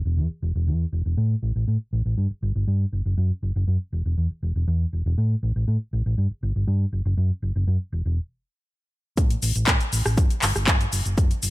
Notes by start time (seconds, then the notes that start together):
0.05 E1
0.17 E2
0.30 muted fingered electric bass stroke
0.42 E1
0.55 E1
0.67 E2
0.92 E1
1.05 E1
1.17 A2
1.43 A1
1.55 A1
1.68 A2
1.93 A1
2.05 A1
2.18 G2
2.31 muted fingered electric bass stroke
2.42 G1
2.55 G1
2.67 G2
2.93 F#1
3.06 F#1
3.18 F#2
3.31 muted fingered electric bass stroke
3.43 F#1
3.56 F#1
3.68 F#2
3.92 E1
4.05 E1
4.18 E2
4.30 muted fingered electric bass stroke
4.43 E1
4.55 E1
4.68 E2
4.93 E1
5.06 E1
5.18 A2
5.43 A1
5.56 A1
5.68 A2
5.93 A1
6.06 A1
6.18 G2
6.31 muted fingered electric bass stroke
6.43 G1
6.56 G1
6.67 G2
6.92 F#1
7.05 F#1
7.17 F#2
7.30 muted fingered electric bass stroke
7.42 F#1
7.55 F#1
7.67 F#2
7.92 E1
8.05 E1
9.18 A2, kick, closed hi-hat, shaker
9.30 closed hi-hat, shaker
9.43 A1, open hi-hat, shaker
9.56 A1, closed hi-hat, shaker
9.67 A2, kick, clap, closed hi-hat, shaker
9.81 closed hi-hat, shaker
9.93 A1, open hi-hat, shaker
10.05 A1, cross-stick, shaker
10.18 G2, kick, closed hi-hat, shaker
10.30 closed hi-hat, shaker
10.42 G1, clap, open hi-hat, shaker
10.56 G1, cross-stick, shaker
10.67 G2, kick, clap, closed hi-hat, shaker
10.81 closed hi-hat, shaker
10.93 F#1, open hi-hat, shaker
11.06 F#1, closed hi-hat, shaker
11.18 F#2, kick, closed hi-hat, shaker
11.31 muted fingered electric bass stroke, closed hi-hat, shaker
11.43 F#1, open hi-hat, shaker